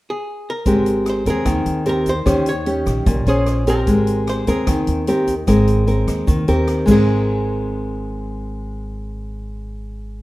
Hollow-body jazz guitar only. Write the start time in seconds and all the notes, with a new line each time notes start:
0.10 G#4
0.50 A#4
1.10 C5
1.30 G#4
1.89 A#4
2.09 C5
2.49 C#5
3.29 G#4
3.70 A#4
4.29 C5
4.49 G#4
6.91 G#4